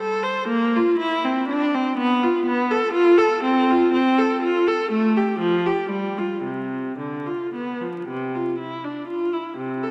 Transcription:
0.00 A4
0.23 C5
0.48 A#3
0.76 F4
0.98 E4
1.24 C4
1.49 D4
1.74 C4
1.97 B3
2.23 F4
2.46 B3
2.71 A4
2.92 F4
3.17 A4
3.43 C4
3.70 F4
3.93 C4
4.18 A4
4.42 F4
4.67 A4
4.92 A3
5.17 G4
5.39 F3
5.66 G4
5.90 G3
6.18 F4
6.44 C3
6.98 D3
7.26 F4
7.54 B3
7.81 F3
8.08 C3
8.35 F4
8.58 E4
8.84 D4
9.08 F4
9.33 E4
9.57 C3
9.83 A4

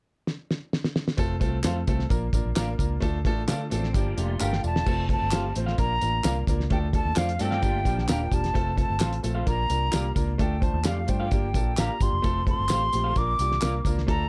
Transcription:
0.27 snare
0.51 snare
0.73 snare
0.84 snare
0.96 snare
1.08 snare
1.17 F1 A3 C4 F4 A4, kick, closed hi-hat, tambourine
1.40 C2 A3 C4 F4 A4, kick, closed hi-hat, tambourine
1.63 F2 A3 C4 F4 A4 C5 F5, snare, clap, closed hi-hat, tambourine
1.87 C2 A3 C4 F4 A4, kick, closed hi-hat, tambourine
1.99 snare
2.09 A#1 A#3 D4 F4 A#4, kick, closed hi-hat, tambourine
2.33 A1 A#3 D4 F4 A#4, kick, closed hi-hat, tambourine
2.45 A#1
2.55 A1 A#3 D4 F4 A#4 D5 F5, snare, clap, closed hi-hat, tambourine
2.78 C#2 A#3 D4 F4 A#4, kick, closed hi-hat, tambourine
3.00 D2 A3 D4 F4 A4, kick, closed hi-hat, tambourine
3.25 A1 A3 D4 F4 A4, kick, closed hi-hat
3.48 D3 A3 D4 F4 A4 D5 F5, snare, clap, closed hi-hat, tambourine
3.70 A1 A3 C4 D4 F4 A4, closed hi-hat, tambourine
3.83 snare
3.93 G1 F3 A#3 D4 F4 G4, kick, closed hi-hat, tambourine
4.17 F1 A3 A#3 D4 F4 G4, closed hi-hat, tambourine
4.40 G1 D4 G4 A4 A#4 F5 G5, clap, tambourine
4.53 snare
4.64 E1 F4 D5 A5, tambourine
4.76 snare
4.86 F1 A3 C4 F4 A4, kick, crash, tambourine
5.09 A3 C4 F4 A4, kick, closed hi-hat
5.13 A5
5.22 G1
5.31 A3 C4 F4 G4 A4 C5 F5, snare, clap, closed hi-hat, tambourine
5.55 A1 A3 C4 F4 C5, closed hi-hat, tambourine
5.66 F4 A4 C5 F5, snare
5.78 A#1 A#3 D4 F4 A#4 A#5, kick, closed hi-hat, tambourine
6.01 A1 A#3 D4 F4 A#4, closed hi-hat, tambourine
6.24 C2 A#3 D4 F4 A#4 D5 F5, snare, clap, closed hi-hat, tambourine
6.47 C#2 A#3 D4 F4 A#4, kick, closed hi-hat, tambourine
6.60 snare
6.70 D2 A3 D4 F4 A4 G5, kick, closed hi-hat
6.93 A3 D4 F4 A4 A5, kick, closed hi-hat, tambourine
7.05 D#2
7.16 F2 A3 D4 F4 A4 C5 D5 F5, snare, clap, closed hi-hat, tambourine
7.29 closed hi-hat
7.39 G2 A3 C4 D4 F4 A4 G5, closed hi-hat, tambourine
7.51 F4 A4 D5 F5, snare
7.62 G1 A3 A#3 D4 F4 G4, kick, closed hi-hat, tambourine
7.84 A#1 F3 A#3 D4 F4 G4, kick, closed hi-hat, tambourine
7.98 snare
8.07 D#1 A#3 D4 F4 G4 A#4 F5 G5, snare, clap, closed hi-hat, tambourine
8.31 E1 A#3 D4 F4 G4 A5, kick, closed hi-hat, tambourine
8.44 snare, closed hi-hat
8.54 F1 A3 C4 F4 A4, kick, closed hi-hat
8.76 A3 C4 F4 A4 A5, kick, closed hi-hat, tambourine
8.90 G1
8.99 A1 A3 C4 F4 A4 C5 F5, snare, clap, closed hi-hat, tambourine
9.13 closed hi-hat
9.23 A#1 A3 C4 F4 A4, closed hi-hat, tambourine
9.35 F4 A4 C5 F5
9.46 A#1 A#3 D4 F4 A#4 A#5, kick, closed hi-hat, tambourine
9.69 C2 A#3 D4 F4 A#4, closed hi-hat, tambourine
9.92 C2 A#3 D4 F4 G4 A#4 D5 F5, snare, clap, closed hi-hat, tambourine
10.15 C#2 A#3 D4 F4 A#4, kick, closed hi-hat, tambourine
10.38 D2 A3 D4 F4 A4 G5, kick, closed hi-hat, tambourine
10.60 A3 D4 F4 C5 A5, kick, closed hi-hat, tambourine
10.74 D#2
10.83 F2 A3 D4 F4 G4 A4 D5 F5, snare, clap, closed hi-hat, tambourine
11.07 G2 A3 D4 F4 C5 G5, kick, closed hi-hat, tambourine
11.20 F4 A4 D5 F5
11.31 G1 A#3 D4 F4 G4, kick, closed hi-hat, tambourine
11.54 A#1 A#3 D4 F4 A4, kick, closed hi-hat, tambourine
11.77 A1 A#3 D4 F4 G4 A#4 F5 A#5, snare, clap, closed hi-hat, tambourine
12.00 G1 A#3 D4 F4 G4 C6, kick, closed hi-hat, tambourine
12.13 F1
12.22 F1 A3 C4 F4 A4, kick, closed hi-hat, tambourine
12.46 A3 C4 F4 A4 C6, kick, closed hi-hat
12.59 G1
12.69 A1 A3 C4 F4 G4 A4 C5 F5, snare, clap, closed hi-hat, tambourine
12.93 A#1 A3 C4 F4 G4, closed hi-hat, tambourine
13.04 F4 A4 C5 F5
13.15 A#1 A#3 D4 F4 A#4 D6, kick, closed hi-hat, tambourine
13.39 C2 A#3 D4 F4 G4, closed hi-hat, tambourine
13.52 snare
13.62 C2 A#3 D4 F4 A#4 D5 F5, snare, clap, closed hi-hat, tambourine
13.85 C#2 A#3 D4 F4 A#4, kick, closed hi-hat, tambourine
13.98 snare
14.07 D2 A3 D4 F4 A4 A#5, kick, closed hi-hat

